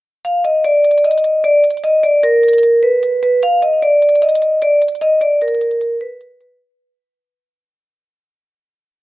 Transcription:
0.25 vibraphone F5, closed hi-hat
0.44 vibraphone D#5, closed hi-hat
0.64 vibraphone D5, closed hi-hat
0.84 closed hi-hat
0.91 closed hi-hat
0.98 closed hi-hat
1.04 vibraphone D#5, closed hi-hat
1.11 closed hi-hat
1.18 closed hi-hat
1.24 closed hi-hat
1.44 vibraphone D5, closed hi-hat
1.64 closed hi-hat
1.70 closed hi-hat
1.77 closed hi-hat
1.84 vibraphone D#5, closed hi-hat
2.03 vibraphone D5, closed hi-hat
2.23 vibraphone A#4, closed hi-hat
2.43 closed hi-hat
2.48 closed hi-hat
2.53 closed hi-hat
2.58 closed hi-hat
2.63 closed hi-hat
2.83 vibraphone B4
3.03 closed hi-hat
3.23 vibraphone B4, closed hi-hat
3.43 vibraphone F5, closed hi-hat
3.62 vibraphone D#5, closed hi-hat
3.82 vibraphone D5, closed hi-hat
4.02 closed hi-hat
4.09 closed hi-hat
4.15 closed hi-hat
4.22 vibraphone D#5, closed hi-hat
4.29 closed hi-hat
4.35 closed hi-hat
4.42 closed hi-hat
4.62 vibraphone D5, closed hi-hat
4.82 closed hi-hat
4.88 closed hi-hat
4.95 closed hi-hat
5.01 vibraphone D#5, closed hi-hat
5.21 vibraphone D5, closed hi-hat
5.41 vibraphone A#4, closed hi-hat
5.48 closed hi-hat
5.55 closed hi-hat
5.61 closed hi-hat
5.71 closed hi-hat
5.81 closed hi-hat
6.01 vibraphone B4
6.21 closed hi-hat
6.41 vibraphone B4, closed hi-hat

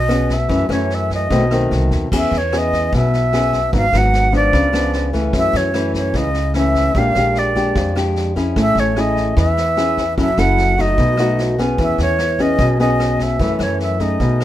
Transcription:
Already playing: upright bass B1, nylon-string guitar B2, flute D#5
0.08 nylon-string guitar B3 C#4 G#4, cross-stick, snare
0.29 flute E5, kick, snare
0.48 nylon-string guitar F#2 E3 A3 C#4, upright bass F#2, kick, snare
0.69 upright bass F#2, nylon-string guitar E3 A3 C#4, flute C#5, cross-stick, snare
0.90 snare
0.95 flute E5
1.10 kick, snare
1.15 flute D#5
1.30 upright bass B1, nylon-string guitar B2 D#3 A3 C4, kick, snare
1.51 nylon-string guitar D#3 A3 C4, cross-stick, snare
1.71 upright bass C2, snare
1.91 upright bass D#2, kick, snare
2.12 upright bass E2, nylon-string guitar E3 B3 C#4 G#4, kick, cross-stick, snare, crash
2.17 flute E5
2.31 upright bass E2, snare
2.38 flute C#5
2.52 nylon-string guitar B3 C#4 G#4, cross-stick, snare
2.58 flute D#5
2.73 kick, snare
2.92 upright bass B1, nylon-string guitar B2, kick, snare
2.97 flute E5
3.13 snare
3.33 nylon-string guitar B3 C#4 G#4, cross-stick, snare
3.53 kick, snare
3.72 upright bass G#1, nylon-string guitar G#2 F#3 B3 D#4, kick, snare
3.77 flute F5
3.93 upright bass G#1, nylon-string guitar F#3 B3 D#4, cross-stick, snare
3.98 flute F#5
4.13 snare
4.32 nylon-string guitar F3 B3 D4, kick, snare
4.36 flute D5
4.53 upright bass C#2, nylon-string guitar C#3, kick, snare
4.72 nylon-string guitar F3 B3 D4, cross-stick, snare
4.93 snare
5.13 nylon-string guitar E3 A3 C#4, kick, snare
5.33 nylon-string guitar F#2, upright bass F#2, kick, cross-stick, snare
5.38 flute E5
5.53 upright bass F#2, flute C#5, snare
5.74 nylon-string guitar E3 A3 C#4, cross-stick, snare
5.94 flute C#5, kick, snare
6.14 upright bass C#2, nylon-string guitar C#3, flute D#5, kick, snare
6.34 snare
6.54 nylon-string guitar E3 A3 C#4, flute E5, cross-stick, snare
6.75 kick, snare
6.95 upright bass A#1, nylon-string guitar A#2 G#3 D4 G4, flute F5, kick, snare
7.15 upright bass A#1, nylon-string guitar G#3 D4 G4, cross-stick, snare
7.35 flute D5, snare
7.55 nylon-string guitar G#3 D4 G4, kick, snare
7.76 nylon-string guitar F2, upright bass F2, kick, snare
7.95 nylon-string guitar G#3 D4 G4, cross-stick, snare
8.16 snare
8.36 nylon-string guitar C#4 E4 G#4, kick, snare
8.56 upright bass A1, nylon-string guitar A3, kick, cross-stick, snare
8.61 flute E5
8.75 upright bass A1, snare
8.80 flute C#5
8.96 nylon-string guitar C#4 E4 G#4, flute D#5, cross-stick, snare
9.17 kick, snare
9.36 upright bass E2, nylon-string guitar E3, flute E5, kick, snare
9.57 snare
9.77 nylon-string guitar C#4 E4 G#4, cross-stick, snare
9.97 kick, snare
10.17 upright bass F#1, nylon-string guitar F#3 C#4 E4 A4, flute E5, kick, snare
10.37 upright bass F#1, nylon-string guitar C#4 E4 A4, flute F#5, cross-stick, snare
10.58 snare
10.78 nylon-string guitar A3 D#4 F#4, flute D#5, kick, snare
10.98 upright bass B1, nylon-string guitar B2, kick, snare
11.17 nylon-string guitar A3 D#4 F#4, cross-stick, snare
11.38 snare
11.58 nylon-string guitar B3 C#4 G#4, kick, snare
11.78 upright bass E2, nylon-string guitar E3, kick, cross-stick, snare
11.83 flute E5
11.98 upright bass E2, flute C#5, snare
12.18 cross-stick, snare
12.38 nylon-string guitar B3 C#4 G#4, flute D#5, kick, snare
12.59 upright bass B1, nylon-string guitar B2, kick, snare
12.79 nylon-string guitar B3 C#4 G#4, flute D#5, snare
13.00 cross-stick, snare
13.19 flute E5, kick, snare
13.39 upright bass F#2, nylon-string guitar F#2 E3 A3 C#4, kick, snare
13.59 upright bass F#2, cross-stick, snare
13.63 flute C#5
13.80 flute E5, snare
14.00 nylon-string guitar A3 D#4 G#4, flute D#5, kick, snare
14.20 upright bass B1, nylon-string guitar B2, kick, snare
14.40 cross-stick, snare

